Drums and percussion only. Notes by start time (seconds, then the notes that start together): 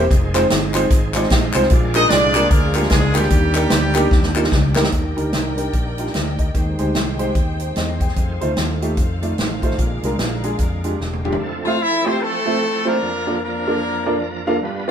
0.11 kick, closed hi-hat
0.34 clap, closed hi-hat
0.50 snare, closed hi-hat
0.74 clap, closed hi-hat
0.91 kick, closed hi-hat
1.14 clap, closed hi-hat
1.23 snare
1.30 kick, snare, closed hi-hat
1.54 clap, closed hi-hat
1.63 snare
1.70 kick, closed hi-hat
1.95 clap, closed hi-hat
2.10 snare, closed hi-hat
2.35 clap, closed hi-hat
2.51 kick, closed hi-hat
2.74 clap, closed hi-hat
2.82 snare
2.90 kick, snare, closed hi-hat
3.15 clap, closed hi-hat
3.22 snare
3.30 kick, closed hi-hat
3.55 clap, closed hi-hat
3.70 snare, closed hi-hat
3.95 clap, closed hi-hat
4.11 kick, snare
4.23 snare
4.36 clap
4.44 snare
4.52 kick, snare
4.76 snare, clap
4.83 snare
4.92 kick, closed hi-hat
5.17 closed hi-hat
5.33 snare, closed hi-hat
5.58 closed hi-hat
5.73 kick, closed hi-hat
5.98 closed hi-hat
6.06 snare
6.14 snare, closed hi-hat
6.39 kick, closed hi-hat
6.55 kick, closed hi-hat
6.79 closed hi-hat
6.95 snare, closed hi-hat
7.19 closed hi-hat
7.35 kick, closed hi-hat
7.60 closed hi-hat
7.76 snare, closed hi-hat
8.00 kick, closed hi-hat
8.08 snare
8.16 kick, closed hi-hat
8.41 closed hi-hat
8.57 snare, closed hi-hat
8.82 closed hi-hat
8.97 kick, closed hi-hat
9.23 closed hi-hat
9.38 snare, closed hi-hat
9.62 kick, closed hi-hat
9.70 snare
9.78 kick, closed hi-hat
10.03 closed hi-hat
10.19 snare, closed hi-hat
10.44 closed hi-hat
10.59 kick, closed hi-hat
10.84 closed hi-hat
11.01 snare
11.13 high tom
11.25 mid tom
11.32 floor tom